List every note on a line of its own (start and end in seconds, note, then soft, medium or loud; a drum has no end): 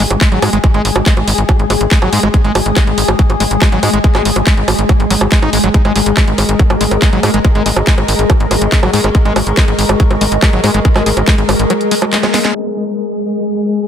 0.00 12.54 G#3 medium
0.00 13.88 G#3 medium
0.00 5.76 G#4 medium
0.00 13.88 G#4 medium
0.06 13.88 D#5 medium
0.11 0.17 G#1 loud
0.11 closed hi-hat medium
0.11 high bongo soft
0.21 0.29 G#3 medium
0.21 kick loud
0.21 clap loud
0.21 closed hi-hat medium
0.32 0.38 G#1 medium
0.32 0.39 F#3 medium
0.32 closed hi-hat soft
0.42 0.48 G#2 loud
0.42 0.50 G#3 medium
0.42 open hi-hat loud
0.42 high bongo medium
0.53 0.59 G#1 medium
0.53 0.58 G#3 medium
0.53 closed hi-hat medium
0.61 0.67 G#3 medium
0.61 7.90 D#6 medium
0.61 kick loud
0.61 closed hi-hat medium
0.61 high bongo soft
0.74 0.80 G#1 medium
0.74 0.82 G#3 loud
0.74 closed hi-hat soft
0.85 0.91 G#1 loud
0.85 open hi-hat loud
0.96 1.02 G#1 medium
0.96 closed hi-hat medium
0.96 high bongo medium
1.06 1.14 G#3 medium
1.06 kick loud
1.06 clap loud
1.06 closed hi-hat medium
1.17 1.23 G#1 medium
1.17 closed hi-hat soft
1.17 high bongo soft
1.28 1.34 G#1 loud
1.28 open hi-hat loud
1.38 1.44 G#1 medium
1.38 closed hi-hat medium
1.49 1.52 F#3 medium
1.49 kick loud
1.49 closed hi-hat medium
1.49 high bongo medium
1.59 1.65 G#1 medium
1.59 closed hi-hat soft
1.70 1.76 G#1 loud
1.70 1.73 G#3 medium
1.70 open hi-hat loud
1.70 high bongo soft
1.81 1.87 G#1 medium
1.81 closed hi-hat medium
1.91 1.99 G#3 medium
1.91 kick loud
1.91 clap loud
1.91 closed hi-hat medium
2.02 2.08 G#1 medium
2.02 2.09 F#3 medium
2.02 closed hi-hat soft
2.02 high bongo medium
2.13 2.19 G#2 loud
2.13 2.20 G#3 medium
2.13 open hi-hat loud
2.23 2.29 G#1 medium
2.23 2.28 G#3 medium
2.23 high bongo soft
2.34 2.37 G#3 medium
2.34 kick loud
2.34 closed hi-hat medium
2.44 2.51 G#1 medium
2.44 2.52 G#3 loud
2.44 closed hi-hat soft
2.55 2.61 G#1 loud
2.55 open hi-hat loud
2.55 high bongo medium
2.66 2.72 G#1 medium
2.66 closed hi-hat medium
2.76 2.84 G#3 medium
2.76 kick loud
2.76 clap loud
2.76 closed hi-hat medium
2.76 high bongo soft
2.87 2.93 G#1 medium
2.87 closed hi-hat soft
2.98 3.04 G#1 loud
2.98 open hi-hat loud
3.08 3.14 G#1 medium
3.08 closed hi-hat medium
3.08 high bongo medium
3.19 3.22 F#3 medium
3.19 kick loud
3.19 closed hi-hat medium
3.30 3.36 G#1 medium
3.30 closed hi-hat soft
3.30 high bongo soft
3.40 3.46 G#1 loud
3.40 3.43 G#3 medium
3.40 open hi-hat loud
3.51 3.57 G#1 loud
3.51 closed hi-hat medium
3.62 3.69 G#3 medium
3.62 kick loud
3.62 clap loud
3.62 closed hi-hat medium
3.62 high bongo medium
3.72 3.78 G#1 medium
3.72 3.80 F#3 medium
3.72 closed hi-hat soft
3.83 3.89 G#2 loud
3.83 3.90 G#3 medium
3.83 open hi-hat loud
3.83 high bongo soft
3.93 4.00 G#1 medium
3.93 3.98 G#3 medium
3.93 closed hi-hat medium
4.04 4.07 G#3 medium
4.04 kick loud
4.04 closed hi-hat soft
4.15 4.21 G#1 medium
4.15 4.22 G#3 loud
4.15 clap soft
4.15 closed hi-hat soft
4.15 high bongo medium
4.25 4.31 G#1 loud
4.25 open hi-hat loud
4.36 4.42 G#1 medium
4.36 closed hi-hat medium
4.36 high bongo soft
4.47 4.54 G#3 medium
4.47 kick loud
4.47 clap loud
4.47 closed hi-hat medium
4.57 4.63 G#1 medium
4.57 closed hi-hat soft
4.68 4.74 G#1 loud
4.68 open hi-hat loud
4.68 high bongo medium
4.79 4.85 G#1 medium
4.79 closed hi-hat medium
4.89 4.92 F#3 medium
4.89 kick loud
4.89 closed hi-hat medium
4.89 high bongo soft
5.00 5.06 G#1 medium
5.00 closed hi-hat soft
5.11 5.17 G#1 loud
5.11 5.13 F#3 loud
5.11 open hi-hat loud
5.21 5.27 G#1 loud
5.21 closed hi-hat medium
5.21 high bongo medium
5.32 5.39 G#3 medium
5.32 kick loud
5.32 clap loud
5.32 closed hi-hat soft
5.42 5.48 G#1 medium
5.42 5.50 D#4 medium
5.42 closed hi-hat soft
5.42 high bongo soft
5.53 5.59 G#1 loud
5.53 5.58 G#3 medium
5.53 open hi-hat loud
5.64 5.70 G#1 medium
5.64 5.69 F#3 loud
5.64 closed hi-hat medium
5.74 5.77 G#3 medium
5.74 12.57 A#4 medium
5.74 kick loud
5.74 closed hi-hat medium
5.85 5.91 G#1 medium
5.85 5.92 G#3 loud
5.85 closed hi-hat soft
5.85 high bongo soft
5.96 6.02 G#1 loud
5.96 5.99 G#3 medium
5.96 open hi-hat loud
6.06 6.12 G#1 medium
6.06 closed hi-hat medium
6.17 6.24 G#3 medium
6.17 kick loud
6.17 clap loud
6.17 closed hi-hat soft
6.17 high bongo medium
6.28 6.34 G#1 medium
6.28 closed hi-hat soft
6.38 6.44 G#1 loud
6.38 open hi-hat loud
6.38 high bongo soft
6.49 6.55 G#1 medium
6.49 closed hi-hat medium
6.59 6.62 F#3 medium
6.59 kick loud
6.59 closed hi-hat medium
6.70 6.76 G#1 medium
6.70 closed hi-hat soft
6.70 high bongo medium
6.81 6.87 G#1 loud
6.81 6.84 G#3 medium
6.81 open hi-hat loud
6.91 6.97 G#1 loud
6.91 closed hi-hat medium
6.91 high bongo soft
7.02 7.09 G#3 medium
7.02 kick loud
7.02 clap loud
7.02 closed hi-hat soft
7.13 7.19 G#1 medium
7.13 7.20 F#3 medium
7.13 closed hi-hat soft
7.23 7.29 G#2 loud
7.23 7.31 G#3 medium
7.23 open hi-hat loud
7.23 high bongo medium
7.34 7.40 G#1 medium
7.34 7.39 G#3 medium
7.34 closed hi-hat medium
7.45 7.48 G#3 medium
7.45 kick loud
7.45 closed hi-hat medium
7.45 high bongo soft
7.55 7.61 G#1 medium
7.55 7.63 G#3 loud
7.55 closed hi-hat soft
7.66 7.72 G#1 loud
7.66 7.69 G#3 medium
7.66 open hi-hat loud
7.76 7.82 G#1 medium
7.76 13.31 C#6 medium
7.76 closed hi-hat medium
7.76 high bongo medium
7.87 7.95 G#3 medium
7.87 kick loud
7.87 clap loud
7.87 closed hi-hat medium
7.98 8.04 G#1 medium
7.98 closed hi-hat soft
7.98 high bongo soft
8.08 8.14 G#1 loud
8.08 open hi-hat loud
8.19 8.25 G#1 medium
8.19 closed hi-hat medium
8.30 8.33 F#3 medium
8.30 kick loud
8.30 closed hi-hat medium
8.30 high bongo medium
8.40 8.46 G#1 medium
8.40 closed hi-hat soft
8.51 8.57 G#1 loud
8.51 8.54 G#3 medium
8.51 open hi-hat loud
8.51 high bongo soft
8.51 zap medium
8.61 8.68 G#1 medium
8.61 closed hi-hat medium
8.72 8.80 G#3 medium
8.72 kick loud
8.72 clap loud
8.72 closed hi-hat medium
8.83 8.89 G#1 medium
8.83 8.90 F#3 medium
8.83 closed hi-hat soft
8.83 high bongo medium
8.93 8.99 G#2 loud
8.93 9.01 G#3 medium
8.93 open hi-hat loud
9.04 9.10 G#1 loud
9.04 9.09 G#3 medium
9.04 closed hi-hat medium
9.04 high bongo soft
9.15 9.18 G#3 medium
9.15 kick loud
9.15 closed hi-hat medium
9.25 9.31 G#1 medium
9.25 9.33 G#3 loud
9.25 closed hi-hat soft
9.36 9.42 G#1 loud
9.36 9.39 G#3 medium
9.36 open hi-hat loud
9.36 high bongo medium
9.47 9.53 G#1 medium
9.47 closed hi-hat medium
9.57 9.65 G#3 medium
9.57 kick loud
9.57 clap loud
9.57 closed hi-hat medium
9.57 high bongo soft
9.68 9.74 G#1 medium
9.68 closed hi-hat soft
9.79 9.85 G#1 loud
9.79 open hi-hat loud
9.89 9.95 G#1 medium
9.89 closed hi-hat medium
9.89 high bongo medium
10.00 10.03 F#3 medium
10.00 kick loud
10.00 closed hi-hat medium
10.11 10.17 G#1 medium
10.11 closed hi-hat soft
10.11 high bongo soft
10.21 10.27 G#1 loud
10.21 10.24 G#3 medium
10.21 open hi-hat loud
10.32 10.38 G#1 medium
10.32 closed hi-hat medium
10.42 10.50 G#3 medium
10.42 kick loud
10.42 clap loud
10.42 closed hi-hat medium
10.42 high bongo medium
10.53 10.59 G#1 medium
10.53 10.60 F#3 medium
10.53 closed hi-hat soft
10.64 10.70 G#2 loud
10.64 10.71 G#3 medium
10.64 open hi-hat loud
10.64 high bongo soft
10.74 10.80 G#1 medium
10.74 10.79 G#3 medium
10.74 closed hi-hat medium
10.85 10.88 G#3 medium
10.85 kick loud
10.85 closed hi-hat medium
10.96 11.02 G#1 medium
10.96 11.03 G#3 loud
10.96 clap soft
10.96 closed hi-hat soft
10.96 high bongo medium
11.06 11.12 G#1 loud
11.06 11.09 G#3 medium
11.06 open hi-hat loud
11.17 11.23 G#1 medium
11.17 closed hi-hat medium
11.17 high bongo soft
11.28 11.35 G#3 medium
11.28 kick loud
11.28 clap loud
11.28 closed hi-hat medium
11.38 11.44 G#1 medium
11.38 closed hi-hat soft
11.49 11.55 G#1 loud
11.49 open hi-hat loud
11.49 high bongo medium
11.59 11.65 G#1 loud
11.59 closed hi-hat medium
11.70 11.73 F#3 medium
11.70 closed hi-hat medium
11.70 high bongo soft
11.81 closed hi-hat soft
11.91 11.94 G#3 medium
11.91 open hi-hat loud
12.02 12.05 G#3 medium
12.02 closed hi-hat medium
12.02 high bongo medium
12.13 12.18 G#3 medium
12.13 clap loud
12.13 closed hi-hat medium
12.23 12.26 G#3 loud
12.23 snare medium
12.23 closed hi-hat soft
12.23 high bongo soft
12.34 12.39 G#3 medium
12.34 snare medium
12.34 open hi-hat loud
12.45 12.52 G#3 loud
12.45 snare medium
12.45 closed hi-hat medium
12.55 13.88 G#3 medium
12.55 13.88 G#4 medium
12.55 closed hi-hat medium
12.55 crash medium
12.76 closed hi-hat medium
12.87 closed hi-hat medium
12.98 closed hi-hat medium
13.08 closed hi-hat soft
13.19 closed hi-hat medium
13.30 closed hi-hat medium
13.40 closed hi-hat medium
13.51 closed hi-hat soft
13.62 closed hi-hat medium
13.72 closed hi-hat medium
13.83 closed hi-hat medium